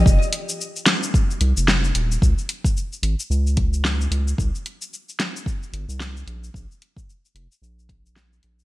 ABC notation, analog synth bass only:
X:1
M:4/4
L:1/16
Q:"Swing 16ths" 1/4=111
K:Fm
V:1 name="Analog synth bass" clef=bass
F,,, z8 z C,, F,,,3 E,,,2 | D,, z4 z A,,, z D,,6 D,,2 | C,, z8 z G,,, C,,3 B,,,2 | B,,, z4 z F,,, z B,,,6 B,,,2 |]